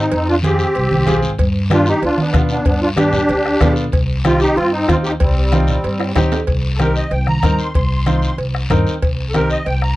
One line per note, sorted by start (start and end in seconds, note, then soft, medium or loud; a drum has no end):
0.00 0.11 C4 medium
0.00 0.11 D#4 medium
0.12 0.63 F2 loud
0.12 0.28 C4 medium
0.12 0.27 D#4 medium
0.12 cowbell loud
0.12 long guiro medium
0.28 0.36 D4 medium
0.28 0.35 F4 loud
0.43 0.66 C4 medium
0.43 1.20 C4 medium
0.43 0.66 F4 medium
0.43 1.20 G4 loud
0.43 0.66 G#4 medium
0.43 cowbell medium
0.43 high conga medium
0.43 short guiro medium
0.59 short guiro medium
0.75 0.89 C2 medium
0.75 cowbell medium
0.75 long guiro medium
0.91 1.06 C2 medium
0.91 high conga medium
1.06 1.22 B1 medium
1.06 1.29 C4 medium
1.06 1.29 F4 medium
1.06 1.29 G#4 loud
1.06 cowbell medium
1.06 high conga medium
1.06 low conga medium
1.06 short guiro medium
1.23 1.37 G#1 medium
1.23 short guiro medium
1.38 1.90 G2 medium
1.38 bombo low medium
1.38 cowbell loud
1.38 long guiro medium
1.70 1.93 B3 medium
1.70 1.93 D4 medium
1.70 1.86 D4 medium
1.70 1.88 F4 loud
1.70 1.93 G4 medium
1.70 bombo rim medium
1.70 cowbell medium
1.70 high conga medium
1.70 short guiro medium
1.86 2.02 D#4 medium
1.86 2.03 G4 loud
1.86 short guiro medium
2.02 2.28 D2 medium
2.02 2.18 D4 medium
2.02 2.20 F4 medium
2.02 cowbell medium
2.02 long guiro medium
2.18 2.34 B3 medium
2.18 2.36 D4 medium
2.18 high conga medium
2.33 2.60 B2 loud
2.33 2.42 G3 medium
2.33 2.56 B3 medium
2.33 2.42 B3 medium
2.33 2.56 D4 medium
2.33 2.56 F4 medium
2.33 bombo low loud
2.33 bombo rim medium
2.33 cowbell medium
2.33 high conga medium
2.33 short guiro medium
2.49 2.65 B3 medium
2.49 2.65 D4 medium
2.49 short guiro medium
2.65 3.17 G2 loud
2.65 2.81 B3 medium
2.65 2.81 D4 medium
2.65 bombo low medium
2.65 cowbell loud
2.65 long guiro medium
2.82 2.89 D4 medium
2.82 2.89 F4 loud
2.96 3.19 B3 medium
2.96 3.19 D4 medium
2.96 3.73 D4 medium
2.96 3.20 G4 medium
2.96 3.73 G4 loud
2.96 bombo rim medium
2.96 cowbell medium
2.96 high conga medium
2.96 short guiro medium
3.13 low conga medium
3.13 short guiro medium
3.29 3.55 D2 medium
3.29 cowbell medium
3.29 long guiro medium
3.46 bombo rim medium
3.60 3.87 B2 loud
3.60 3.83 B3 medium
3.60 3.83 D4 medium
3.60 3.84 F4 loud
3.60 bombo low medium
3.60 bombo rim medium
3.60 cowbell medium
3.60 high conga medium
3.60 low conga medium
3.60 low timbale medium
3.60 short guiro medium
3.76 short guiro medium
3.92 4.44 C2 loud
3.92 bombo low medium
3.92 cowbell loud
3.92 long guiro medium
4.25 4.47 C4 medium
4.25 4.41 C4 medium
4.25 4.47 D#4 medium
4.25 4.40 F4 loud
4.25 4.48 G4 medium
4.25 bombo rim medium
4.25 cowbell medium
4.25 high conga loud
4.25 short guiro medium
4.40 4.56 D#4 medium
4.40 4.56 G4 loud
4.40 short guiro medium
4.56 4.82 G2 medium
4.56 4.72 C4 medium
4.56 4.71 F4 loud
4.56 cowbell medium
4.56 long guiro medium
4.72 4.88 C4 medium
4.72 4.89 D#4 loud
4.88 5.14 D#2 medium
4.88 5.11 C4 medium
4.88 4.97 C4 medium
4.88 5.11 D#4 medium
4.88 4.95 F4 loud
4.88 5.11 F4 medium
4.88 bombo low medium
4.88 bombo rim medium
4.88 cowbell medium
4.88 high conga medium
4.88 short guiro medium
5.04 5.13 D#4 medium
5.04 5.11 G4 loud
5.04 short guiro medium
5.20 5.71 C2 loud
5.20 6.12 G3 medium
5.20 6.12 C4 medium
5.20 bombo low medium
5.20 cowbell loud
5.20 long guiro medium
5.52 5.74 C4 medium
5.52 5.75 D#4 medium
5.52 5.75 F4 medium
5.52 bombo rim medium
5.52 cowbell medium
5.52 high conga medium
5.52 short guiro medium
5.67 low conga medium
5.67 short guiro medium
5.84 6.10 G2 loud
5.84 cowbell medium
5.84 long guiro medium
5.99 bombo rim medium
5.99 high timbale medium
6.15 6.41 D#2 medium
6.15 6.38 C4 medium
6.15 6.38 D#4 medium
6.15 6.39 G4 loud
6.15 bombo low medium
6.15 bombo rim medium
6.15 cowbell medium
6.15 high conga medium
6.15 low conga medium
6.15 high timbale medium
6.15 short guiro medium
6.32 low timbale loud
6.32 short guiro medium
6.47 6.99 C2 medium
6.47 bombo low medium
6.47 cowbell loud
6.47 long guiro medium
6.75 7.02 C4 medium
6.75 6.78 A4 medium
6.75 cowbell medium
6.79 7.02 D#4 medium
6.79 7.02 G4 medium
6.79 6.95 A#4 medium
6.79 bombo rim medium
6.79 high conga medium
6.79 short guiro medium
6.96 7.12 D#5 medium
6.96 short guiro medium
7.11 7.37 C2 medium
7.11 7.27 G5 medium
7.11 cowbell medium
7.11 long guiro medium
7.27 7.59 A#5 medium
7.27 bombo rim medium
7.27 high conga medium
7.43 7.56 G2 loud
7.43 7.65 C4 medium
7.43 7.66 D#4 medium
7.43 7.66 A#4 medium
7.43 bombo low medium
7.43 bombo rim medium
7.43 cowbell medium
7.43 high conga medium
7.43 short guiro medium
7.59 7.73 C6 medium
7.59 short guiro medium
7.74 8.26 C2 loud
7.74 8.37 C6 medium
7.74 bombo low medium
7.74 cowbell medium
7.74 long guiro medium
8.06 8.29 C4 medium
8.06 8.29 D#4 medium
8.06 8.29 F4 medium
8.06 bombo rim medium
8.06 cowbell medium
8.06 high conga medium
8.06 short guiro medium
8.22 short guiro medium
8.38 8.64 C2 medium
8.38 cowbell medium
8.38 long guiro medium
8.55 bombo rim medium
8.70 8.84 G2 loud
8.70 8.93 C4 medium
8.70 8.93 D#4 medium
8.70 8.93 A#4 loud
8.70 bombo low medium
8.70 bombo rim medium
8.70 cowbell medium
8.70 high conga medium
8.70 low conga medium
8.70 short guiro medium
8.87 short guiro medium
9.02 9.54 C2 medium
9.02 bombo low medium
9.02 cowbell loud
9.02 long guiro medium
9.29 9.32 A4 medium
9.33 9.57 C4 medium
9.33 9.57 D#4 medium
9.33 9.57 G4 medium
9.33 9.50 A#4 loud
9.33 bombo rim medium
9.33 cowbell medium
9.33 high conga medium
9.33 short guiro medium
9.50 9.66 D#5 loud
9.50 short guiro medium
9.66 9.92 C2 medium
9.66 9.82 G5 medium
9.66 cowbell medium
9.66 long guiro medium
9.82 9.96 A#5 medium
9.82 bombo rim medium